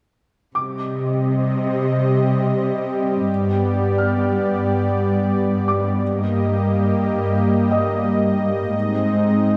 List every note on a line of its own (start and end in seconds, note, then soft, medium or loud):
0.55 3.24 C3 soft
0.55 5.97 G3 medium
0.55 3.24 C4 medium
0.55 5.97 G4 medium
0.55 3.24 D#5 medium
0.55 2.56 D6 soft
3.28 8.70 G2 soft
3.28 6.02 B3 medium
3.28 6.01 D5 medium
3.98 5.98 F6 soft
5.68 7.68 D6 soft
6.02 8.70 G3 medium
6.02 8.74 A#3 medium
6.02 8.71 G4 medium
6.02 9.57 D#5 medium
7.71 9.57 D#5 soft
7.71 9.57 D#6 soft
8.73 9.57 G#2 medium
8.73 9.57 G#3 medium
8.73 9.57 C4 medium
8.73 9.57 D#4 medium